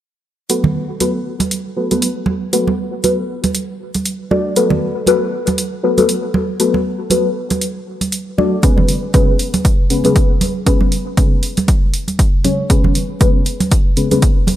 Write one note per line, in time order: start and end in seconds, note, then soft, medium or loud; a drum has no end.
0.49 0.78 F#4 medium
0.49 0.78 A4 medium
0.49 0.78 B4 loud
0.49 closed hi-hat medium
0.64 high conga medium
0.64 low conga medium
1.00 1.19 F#4 medium
1.00 1.19 A4 medium
1.00 1.19 B4 loud
1.00 closed hi-hat medium
1.00 high conga medium
1.40 closed hi-hat medium
1.40 high conga medium
1.51 closed hi-hat medium
1.77 1.89 F#4 medium
1.77 1.89 A4 medium
1.77 1.89 B4 medium
1.91 2.07 F#4 loud
1.91 2.08 A4 medium
1.91 2.08 B4 loud
1.91 closed hi-hat medium
1.91 high conga medium
2.02 closed hi-hat medium
2.26 high conga loud
2.53 2.71 F#4 loud
2.53 2.72 A4 medium
2.53 2.72 B4 loud
2.53 closed hi-hat medium
2.67 high conga medium
3.04 3.22 F#4 medium
3.04 3.22 A4 medium
3.04 3.22 B4 medium
3.04 closed hi-hat medium
3.04 high conga medium
3.44 closed hi-hat soft
3.44 high conga medium
3.55 closed hi-hat medium
3.94 closed hi-hat soft
3.94 high conga medium
4.05 closed hi-hat medium
4.31 4.49 F#4 medium
4.31 4.50 A4 medium
4.31 4.50 D5 medium
4.31 high conga loud
4.56 4.85 F#4 medium
4.56 4.85 A4 medium
4.56 4.85 B4 loud
4.56 closed hi-hat medium
4.70 high conga medium
4.70 low conga medium
5.06 5.26 F#4 medium
5.06 5.26 A4 medium
5.06 5.26 B4 loud
5.06 closed hi-hat medium
5.06 high conga medium
5.47 closed hi-hat soft
5.47 high conga medium
5.58 closed hi-hat medium
5.83 5.96 F#4 medium
5.83 5.96 A4 medium
5.83 5.96 B4 medium
5.98 6.14 F#4 loud
5.98 6.14 A4 medium
5.98 6.14 B4 loud
5.98 closed hi-hat soft
5.98 high conga medium
6.09 closed hi-hat medium
6.34 high conga loud
6.60 6.78 F#4 loud
6.60 6.78 A4 medium
6.60 6.78 B4 loud
6.60 closed hi-hat medium
6.74 high conga medium
7.10 7.29 F#4 medium
7.10 7.29 A4 medium
7.10 7.29 B4 medium
7.10 closed hi-hat medium
7.10 high conga medium
7.50 closed hi-hat soft
7.50 high conga medium
7.61 closed hi-hat medium
8.01 closed hi-hat soft
8.01 high conga medium
8.12 closed hi-hat medium
8.38 8.56 F#4 medium
8.38 8.56 A4 medium
8.38 8.56 D5 medium
8.38 high conga loud
8.63 8.91 C#4 medium
8.63 8.92 G#4 medium
8.63 8.92 B4 loud
8.63 kick loud
8.63 closed hi-hat medium
8.77 high conga medium
8.77 low conga medium
8.89 open hi-hat loud
9.14 9.32 C#4 medium
9.14 9.33 G#4 medium
9.14 9.33 B4 loud
9.14 kick loud
9.14 closed hi-hat medium
9.14 high conga medium
9.39 open hi-hat medium
9.54 closed hi-hat soft
9.54 high conga medium
9.65 kick loud
9.65 closed hi-hat medium
9.90 10.02 C#4 medium
9.90 10.03 G#4 medium
9.90 10.03 B4 medium
9.90 open hi-hat loud
10.04 10.21 C#4 medium
10.04 10.21 G#4 medium
10.04 10.21 B4 loud
10.04 closed hi-hat soft
10.04 high conga medium
10.16 kick loud
10.16 closed hi-hat medium
10.41 open hi-hat medium
10.41 high conga medium
10.66 10.85 C#4 loud
10.66 10.85 G#4 medium
10.66 10.85 B4 loud
10.66 kick loud
10.66 closed hi-hat medium
10.81 high conga medium
10.92 open hi-hat medium
11.17 11.36 C#4 medium
11.17 11.36 G#4 medium
11.17 11.36 B4 medium
11.17 kick loud
11.17 closed hi-hat medium
11.17 high conga medium
11.43 open hi-hat medium
11.57 closed hi-hat soft
11.57 high conga medium
11.68 kick loud
11.68 closed hi-hat medium
11.94 open hi-hat loud
12.08 closed hi-hat soft
12.08 high conga medium
12.19 kick loud
12.19 closed hi-hat medium
12.44 12.63 C#4 medium
12.44 12.63 G#4 medium
12.44 12.63 C#5 medium
12.44 open hi-hat medium
12.44 high conga medium
12.70 12.98 C#4 medium
12.70 12.98 G#4 medium
12.70 12.98 B4 loud
12.70 kick loud
12.70 closed hi-hat medium
12.84 high conga medium
12.84 low conga medium
12.95 open hi-hat loud
13.21 13.39 C#4 medium
13.21 13.39 G#4 medium
13.21 13.39 B4 loud
13.21 kick loud
13.21 closed hi-hat medium
13.21 high conga medium
13.46 open hi-hat medium
13.60 closed hi-hat soft
13.60 high conga medium
13.71 kick loud
13.71 closed hi-hat medium
13.97 14.09 C#4 medium
13.97 14.09 G#4 medium
13.97 14.09 B4 medium
13.97 open hi-hat loud
14.11 14.28 C#4 loud
14.11 14.28 G#4 medium
14.11 14.28 B4 loud
14.11 closed hi-hat medium
14.11 high conga medium
14.22 kick loud
14.22 closed hi-hat medium
14.47 open hi-hat medium
14.47 high conga medium